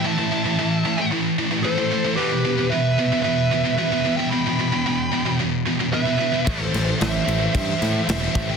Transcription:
<<
  \new Staff \with { instrumentName = "Lead electric guitar" } { \time 4/4 \key e \minor \tempo 4 = 112 a''2 r4 c''4 | b'4 e''4 e''4 e''8. g''16 | b''2 r4 e''4 | c''4 e''4 e''4 e''8. g''16 | }
  \new Staff \with { instrumentName = "Lead electric guitar" } { \time 4/4 \key e \minor e''2 r4 a'4 | g'4 b'4 b'4 b'8. e''16 | g''2 r4 b'4 | a'4 c''4 c''4 c''8. e''16 | }
  \new Staff \with { instrumentName = "Distorted electric guitar" } { \clef bass \time 4/4 \key e \minor <a, e>16 <a, e>16 <a, e>16 <a, e>16 <a, e>8 <a, e>16 <a, e>16 <a, e>8 <a, e>16 <a, e>16 <a, e>16 <a, e>16 <a, e>16 <a, e>16 | <e, b, e>16 <e, b,>16 <e, b,>16 <e, b,>16 <e, b,>8 <e, b,>16 <e, b,>16 <e, b,>8 <e, b,>16 <e, b,>16 <e, b,>16 <e, b,>16 <e, b,>16 <e, b,>16 | <e, b,>16 <e, b,>16 <e, b,>16 <e, b,>16 <e, b,>8 <e, b,>16 <e, b,>16 <e, b,>8 <e, b,>16 <e, b,>16 <e, b,>16 <e, b,>16 <e, b,>16 <e, b,>16 | <a, e a>16 <a, e>16 <a, e>16 <a, e>16 <a, e>8 <a, e>16 <a, e>16 <a, e>8 <a, e>16 <a, e>16 <a, e>16 <a, e>16 <a, e>16 <a, e>16 | }
  \new Staff \with { instrumentName = "Distorted electric guitar" } { \clef bass \time 4/4 \key e \minor <a, e>16 <a, e>16 <a, e>16 <a, e>16 <a, e>8 <a, e>16 <a, e>16 <a, e>8 <a, e>16 <a, e>16 <a, e>16 <a, e>16 <a, e>16 <a, e>16 | <e, b, e>16 <e, b,>16 <e, b,>16 <e, b,>16 <e, b,>8 <e, b,>16 <e, b,>16 <e, b,>8 <e, b,>16 <e, b,>16 <e, b,>16 <e, b,>16 <e, b,>16 <e, b,>16 | <e, b,>16 <e, b,>16 <e, b,>16 <e, b,>16 <e, b,>8 <e, b,>16 <e, b,>16 <e, b,>8 <e, b,>16 <e, b,>16 <e, b,>16 <e, b,>16 <e, b,>16 <e, b,>16 | <a, e a>16 <a, e>16 <a, e>16 <a, e>16 <a, e>8 <a, e>16 <a, e>16 <a, e>8 <a, e>16 <a, e>16 <a, e>16 <a, e>16 <a, e>16 <a, e>16 | }
  \new Staff \with { instrumentName = "Picked electric bass" } { \clef bass \time 4/4 \key e \minor r1 | r1 | r1 | a,,8 a,,8 a,,8 a,,8 g,8 a,8 e,,8 a,,8 | }
  \new DrumStaff \with { instrumentName = "Drums" } \drummode { \time 4/4 r4 r4 r4 r4 | r4 r4 r4 r4 | r4 r4 r4 r4 | <cymc bd>8 <cymc sn>8 <cymc sn>8 cymc8 <cymc bd>8 <cymc sn>8 <cymc sn>8 <cymc bd>8 | }
>>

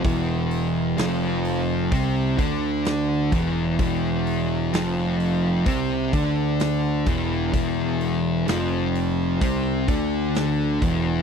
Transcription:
<<
  \new Staff \with { instrumentName = "Distorted electric guitar" } { \clef bass \time 4/4 \key d \mixolydian \tempo 4 = 64 <e, e>4 <f, f>4 <c c'>8 <d d'>4 <e, e>8 | <e, e>4 <f, f>4 <c c'>8 <d d'>4 <e, e>8 | <e, e>4 <f, f>4 <c c'>8 <d d'>4 <e, e>8 | }
  \new Staff \with { instrumentName = "Distorted electric guitar" } { \clef bass \time 4/4 \key d \mixolydian <e, e>4 <f, f>4 <c c'>8 <d d'>4 <e, e>8 | <e, e>4 <f, f>4 <c c'>8 <d d'>4 <e, e>8 | <e, e>4 <f, f>4 <c c'>8 <d d'>4 <e, e>8 | }
  \new Staff \with { instrumentName = "Picked electric bass" } { \clef bass \time 4/4 \key d \mixolydian e,,4 f,,4 c,8 d,4 e,,8 | e,,4 f,,4 c,8 d,4 e,,8 | e,,4 f,,4 c,8 d,4 e,,8 | }
  \new DrumStaff \with { instrumentName = "Drums" } \drummode { \time 4/4 <hho bd>8 hho8 <hho sn>8 hho8 <hho bd>8 <hho bd>8 <hho sn>8 <hho bd>8 | <hho bd>8 hho8 <hho sn>8 hho8 <hho bd>8 <hho bd>8 <hho sn>8 <hho bd>8 | <hho bd>8 hho8 <hho sn>8 hho8 <hho bd>8 <hho bd>8 <hho sn>8 <hho bd>8 | }
>>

